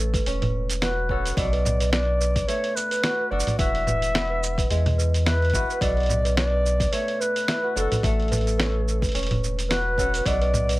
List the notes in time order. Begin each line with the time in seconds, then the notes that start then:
Already playing: A1 A3 C#4 F#4 A4 B4
0.14 B4, kick, open hi-hat, shaker
0.26 E1 C#4, open hi-hat, shaker
0.41 B4, open hi-hat, low conga
0.70 open hi-hat, shaker
0.81 F#4 B4, snare, open hi-hat, shaker
1.09 C#4 F#4 A4 B4, kick
1.26 open hi-hat, shaker
1.37 B1 B2 A4 D5, kick, open hi-hat, shaker
1.53 B4, open hi-hat
1.65 low conga, shaker
1.80 B4, open hi-hat, shaker
1.92 D4 D5, snare, open hi-hat, shaker
2.20 B4, shaker
2.36 kick, open hi-hat, shaker
2.48 A3 B4 C#5, open hi-hat, shaker
2.64 open hi-hat
2.76 B4, shaker
2.91 B4, open hi-hat, shaker
3.04 F#4, snare, open hi-hat, shaker
3.20 B4
3.31 F#1 D4 F#4 A4 D5
3.40 shaker
3.47 open hi-hat, low conga, shaker
3.58 E1 E3 F#4 B4 E5, kick, open hi-hat, shaker
3.75 open hi-hat
3.87 B4, low conga, shaker
4.02 open hi-hat, shaker
4.15 B3, snare, open hi-hat, shaker
4.30 B4
4.43 shaker
4.58 B4, kick, open hi-hat, shaker
4.70 E2 G#3, open hi-hat, shaker
4.86 open hi-hat, low conga
4.98 B4, shaker
5.14 open hi-hat, shaker
5.25 E4 B4, snare, open hi-hat, shaker
5.42 open hi-hat
5.45 open hi-hat
5.50 G#1 B3, kick, open hi-hat
5.54 E4 F#4, shaker
5.69 B4, shaker
5.81 B1 B2 A4 B4 D5, kick, open hi-hat, shaker
5.97 open hi-hat
6.00 open hi-hat
6.03 open hi-hat
6.06 open hi-hat, low conga, shaker
6.25 B4, open hi-hat, shaker
6.37 D4 D5, snare, open hi-hat, shaker
6.52 B4
6.66 shaker
6.80 kick, open hi-hat, shaker
6.92 A3 B4 C#5, open hi-hat, shaker
7.08 open hi-hat
7.20 B4, shaker
7.36 open hi-hat, shaker
7.48 E4, snare, open hi-hat, shaker
7.63 F#4 B4
7.76 F#1 D4 F#4 A4, shaker
7.91 B4, open hi-hat, low conga, shaker
8.03 A1 A3 A4, kick, open hi-hat, shaker
8.20 open hi-hat
8.22 open hi-hat
8.28 B4, open hi-hat
8.32 open hi-hat, low conga, shaker
8.37 open hi-hat
8.41 open hi-hat
8.47 open hi-hat, shaker
8.58 C#4 B4, snare, open hi-hat, shaker
8.88 shaker
9.01 B4, kick, open hi-hat, shaker
9.06 open hi-hat
9.09 open hi-hat
9.12 E1 C#4, open hi-hat
9.15 open hi-hat, shaker
9.19 open hi-hat
9.23 open hi-hat
9.27 B4, open hi-hat
9.31 open hi-hat, low conga
9.44 shaker
9.59 open hi-hat, shaker
9.69 F#4 B4, snare, open hi-hat, shaker
9.97 C#4 F#4 A4 B4, kick, shaker
10.14 open hi-hat, shaker
10.26 B1 B2 A4 D5, kick, open hi-hat, shaker
10.41 B4, open hi-hat
10.54 low conga, shaker
10.69 B4, open hi-hat, shaker
10.72 shaker
10.76 shaker